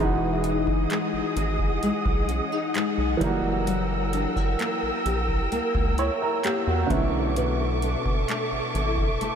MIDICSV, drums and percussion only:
0, 0, Header, 1, 2, 480
1, 0, Start_track
1, 0, Tempo, 923077
1, 1910, Time_signature, 4, 2, 24, 8
1, 4863, End_track
2, 0, Start_track
2, 0, Title_t, "Drums"
2, 228, Note_on_c, 9, 42, 72
2, 280, Note_off_c, 9, 42, 0
2, 349, Note_on_c, 9, 36, 95
2, 401, Note_off_c, 9, 36, 0
2, 469, Note_on_c, 9, 42, 64
2, 475, Note_on_c, 9, 39, 91
2, 521, Note_off_c, 9, 42, 0
2, 527, Note_off_c, 9, 39, 0
2, 710, Note_on_c, 9, 42, 65
2, 762, Note_off_c, 9, 42, 0
2, 829, Note_on_c, 9, 36, 77
2, 881, Note_off_c, 9, 36, 0
2, 950, Note_on_c, 9, 42, 60
2, 1002, Note_off_c, 9, 42, 0
2, 1069, Note_on_c, 9, 36, 96
2, 1121, Note_off_c, 9, 36, 0
2, 1190, Note_on_c, 9, 42, 58
2, 1242, Note_off_c, 9, 42, 0
2, 1429, Note_on_c, 9, 42, 66
2, 1435, Note_on_c, 9, 39, 108
2, 1481, Note_off_c, 9, 42, 0
2, 1487, Note_off_c, 9, 39, 0
2, 1669, Note_on_c, 9, 36, 101
2, 1670, Note_on_c, 9, 42, 72
2, 1721, Note_off_c, 9, 36, 0
2, 1722, Note_off_c, 9, 42, 0
2, 1909, Note_on_c, 9, 42, 76
2, 1961, Note_off_c, 9, 42, 0
2, 2148, Note_on_c, 9, 42, 73
2, 2200, Note_off_c, 9, 42, 0
2, 2269, Note_on_c, 9, 36, 96
2, 2321, Note_off_c, 9, 36, 0
2, 2389, Note_on_c, 9, 42, 65
2, 2395, Note_on_c, 9, 39, 87
2, 2441, Note_off_c, 9, 42, 0
2, 2447, Note_off_c, 9, 39, 0
2, 2630, Note_on_c, 9, 42, 66
2, 2682, Note_off_c, 9, 42, 0
2, 2749, Note_on_c, 9, 36, 79
2, 2801, Note_off_c, 9, 36, 0
2, 2870, Note_on_c, 9, 42, 55
2, 2922, Note_off_c, 9, 42, 0
2, 2989, Note_on_c, 9, 36, 99
2, 3041, Note_off_c, 9, 36, 0
2, 3110, Note_on_c, 9, 42, 58
2, 3162, Note_off_c, 9, 42, 0
2, 3349, Note_on_c, 9, 42, 64
2, 3354, Note_on_c, 9, 39, 112
2, 3401, Note_off_c, 9, 42, 0
2, 3406, Note_off_c, 9, 39, 0
2, 3589, Note_on_c, 9, 36, 100
2, 3590, Note_on_c, 9, 42, 70
2, 3641, Note_off_c, 9, 36, 0
2, 3642, Note_off_c, 9, 42, 0
2, 3829, Note_on_c, 9, 42, 73
2, 3881, Note_off_c, 9, 42, 0
2, 4068, Note_on_c, 9, 42, 72
2, 4120, Note_off_c, 9, 42, 0
2, 4189, Note_on_c, 9, 36, 90
2, 4241, Note_off_c, 9, 36, 0
2, 4308, Note_on_c, 9, 42, 60
2, 4315, Note_on_c, 9, 39, 89
2, 4360, Note_off_c, 9, 42, 0
2, 4367, Note_off_c, 9, 39, 0
2, 4551, Note_on_c, 9, 42, 68
2, 4603, Note_off_c, 9, 42, 0
2, 4670, Note_on_c, 9, 36, 80
2, 4722, Note_off_c, 9, 36, 0
2, 4790, Note_on_c, 9, 42, 59
2, 4842, Note_off_c, 9, 42, 0
2, 4863, End_track
0, 0, End_of_file